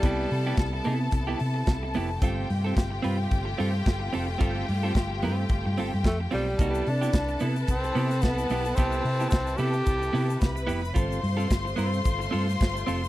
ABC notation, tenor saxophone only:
X:1
M:4/4
L:1/8
Q:"Swing 16ths" 1/4=110
K:C
V:1 name="Tenor saxophone"
G,3 z4 z | z8 | z6 A, G,- | G, D2 z C2 B,2 |
C2 C G4 z | z8 |]